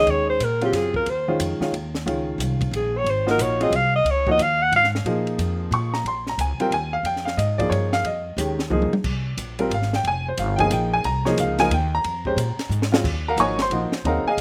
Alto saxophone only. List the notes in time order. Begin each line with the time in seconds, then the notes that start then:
Already playing: D#5
0.10 C#5
0.30 C5
0.44 A#4
0.65 G4
0.76 G#4
0.96 A#4
1.09 C5
2.76 G#4
2.98 C#5
3.10 C5
3.31 A#4
3.42 C#5
3.63 D#5
3.75 F5
3.96 D#5
4.10 C#5
4.31 D#5
4.42 F5
4.62 F#5
4.76 F5